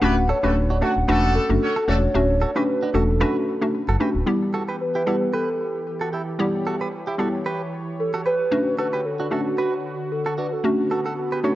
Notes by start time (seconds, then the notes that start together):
Already playing: F#5
0.02 D1 A3 B3 C#4 D4 E4 F#4 G4 B4
0.29 F#4 A4 C#5
0.43 D1 A3 C#4 D4 F#4 G4 A4 B4
0.70 D4 F#4
0.81 F#3 A3 C#4 D4 F#4 A4 F#5
0.96 D1
1.08 E1 A3 C#4 D4 F#4 A4 B4 F#5
1.35 A4
1.49 F#1 A3 C#4 D4 F#4
1.62 C#4 F#4 A4 C#5
1.76 F#4 A4
1.88 E1 A3 C#4 D4 F#4 A4 C#5
2.14 D1 A3 C#4 D4 F#4
2.41 F#4 A4
2.55 A3 C#4 D4 F#4 G4 B4
2.83 D4 F#4
2.94 E1 A3 C#4 D4 F#4 A4
3.21 A3 C#4 D4 F#4 B4
3.62 A3 C#4 D4 F#4
3.88 F#1 F#4 A4
4.00 A3 C#4 D4 F#4 G4 B4
4.15 D1
4.26 E3 G3 B3 E4 G4
4.54 F#4 A4
4.68 G4 B4
4.81 B4
4.95 E4 G4
5.06 G3 B3 E4 F#4 G4 A4
5.33 G4 A4 B4
6.01 F#4 A4
6.13 E4 G4
6.39 G3 B3 E4 G4 C#5
6.67 F#4 A4
6.81 G4 B4
7.07 E4 G4
7.18 G3 B3 E4 F#4 G4 A4
7.46 G4 B4
8.00 A4
8.14 F#4 A4
8.26 G4 B4
8.51 D3 A3 C#4 D4 F#4
8.79 F#4 A4 B4
8.93 G4 B4
9.05 A4
9.20 D4 F#4
9.31 A3 C#4 D4 F#4 A4
9.58 F#4 B4
10.12 A4
10.26 F#4 A4
10.38 D4 F#4 B4
10.53 A4
10.64 A3 B3 C#4 D4 F#4
10.91 F#4 A4
11.06 F#4 A4
11.32 G4 B4
11.43 A3 C#4 D4 F#4 A4 C#5